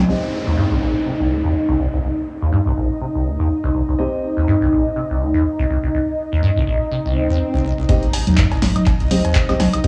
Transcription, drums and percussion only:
7.89 kick loud
7.89 closed hi-hat medium
7.89 ride medium
8.03 closed hi-hat soft
8.13 open hi-hat loud
8.13 ride medium
8.13 cowbell medium
8.27 closed hi-hat medium
8.27 low conga medium
8.38 kick loud
8.38 snare loud
8.38 clap loud
8.38 closed hi-hat medium
8.38 ride medium
8.51 snare medium
8.51 closed hi-hat soft
8.51 cowbell medium
8.62 kick medium
8.62 snare medium
8.62 open hi-hat loud
8.62 ride medium
8.76 snare medium
8.76 closed hi-hat medium
8.76 low conga medium
8.76 high woodblock medium
8.86 kick loud
8.86 clap soft
8.86 closed hi-hat medium
8.86 ride medium
8.86 cowbell medium
9.00 closed hi-hat soft
9.11 open hi-hat loud
9.11 ride medium
9.11 low conga medium
9.25 closed hi-hat medium
9.25 cowbell medium
9.35 kick loud
9.35 snare loud
9.35 clap loud
9.35 closed hi-hat medium
9.35 ride medium
9.49 snare soft
9.49 closed hi-hat soft
9.49 high woodblock medium
9.60 snare medium
9.60 open hi-hat medium
9.60 ride medium
9.60 cowbell medium
9.60 low conga medium
9.73 closed hi-hat medium
9.73 ride soft
9.73 high woodblock medium
9.84 kick loud
9.84 closed hi-hat medium
9.84 ride medium

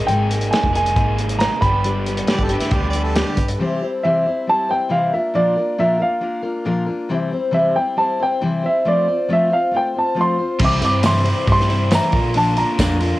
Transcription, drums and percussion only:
0.08 closed hi-hat medium
0.31 closed hi-hat medium
0.41 closed hi-hat medium
0.53 snare loud
0.53 closed hi-hat medium
0.64 kick medium
0.75 closed hi-hat medium
0.86 closed hi-hat medium
0.96 kick loud
0.96 closed hi-hat medium
1.18 closed hi-hat medium
1.29 closed hi-hat medium
1.40 snare loud
1.40 closed hi-hat medium
1.62 kick medium
1.62 closed hi-hat medium
1.84 closed hi-hat medium
2.06 closed hi-hat medium
2.17 closed hi-hat medium
2.27 snare loud
2.27 closed hi-hat medium
2.39 kick medium
2.49 closed hi-hat medium
2.60 snare soft
2.60 closed hi-hat medium
2.71 kick loud
2.71 closed hi-hat medium
2.93 closed hi-hat medium
3.15 snare loud
3.15 closed hi-hat medium
3.37 kick medium
3.37 closed hi-hat medium
3.48 closed hi-hat medium
10.59 kick loud
10.59 crash loud
10.82 open hi-hat medium
11.03 snare loud
11.03 open hi-hat medium
11.03 tambourine loud
11.26 open hi-hat medium
11.48 kick loud
11.48 open hi-hat medium
11.60 snare soft
11.70 open hi-hat medium
11.91 snare loud
11.91 open hi-hat medium
11.91 tambourine medium
12.12 kick loud
12.12 open hi-hat medium
12.34 open hi-hat medium
12.56 open hi-hat medium
12.79 kick medium
12.79 snare loud
12.79 open hi-hat medium
12.79 tambourine loud
13.00 open hi-hat medium

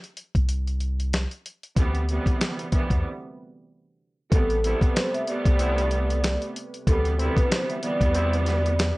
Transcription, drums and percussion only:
0.04 closed hi-hat medium
0.17 closed hi-hat medium
0.35 kick loud
0.35 closed hi-hat medium
0.49 closed hi-hat loud
0.67 closed hi-hat medium
0.80 closed hi-hat medium
1.00 closed hi-hat medium
1.13 snare loud
1.13 closed hi-hat loud
1.31 closed hi-hat medium
1.46 closed hi-hat medium
1.63 closed hi-hat medium
1.76 kick loud
1.76 closed hi-hat medium
1.95 closed hi-hat soft
2.09 closed hi-hat medium
2.26 kick medium
2.26 closed hi-hat soft
2.41 snare loud
2.41 closed hi-hat loud
2.59 closed hi-hat medium
2.72 kick loud
2.72 closed hi-hat medium
2.90 kick loud
2.90 closed hi-hat medium
4.32 kick loud
4.32 closed hi-hat medium
4.50 closed hi-hat medium
4.64 closed hi-hat medium
4.81 kick loud
4.81 closed hi-hat medium
4.96 snare loud
4.96 closed hi-hat loud
5.14 closed hi-hat medium
5.27 closed hi-hat medium
5.45 kick loud
5.45 closed hi-hat medium
5.59 closed hi-hat loud
5.78 closed hi-hat medium
5.91 closed hi-hat medium
6.10 closed hi-hat medium
6.24 snare loud
6.24 closed hi-hat loud
6.42 closed hi-hat medium
6.56 closed hi-hat medium
6.74 closed hi-hat medium
6.87 kick loud
6.87 closed hi-hat medium
7.05 closed hi-hat soft
7.19 closed hi-hat medium
7.37 kick medium
7.37 closed hi-hat medium
7.52 snare loud
7.52 closed hi-hat loud
7.70 closed hi-hat medium
7.83 closed hi-hat medium
8.01 kick loud
8.01 closed hi-hat medium
8.15 closed hi-hat loud
8.33 closed hi-hat medium
8.46 snare soft
8.46 closed hi-hat medium
8.66 closed hi-hat medium
8.79 snare loud
8.79 closed hi-hat loud

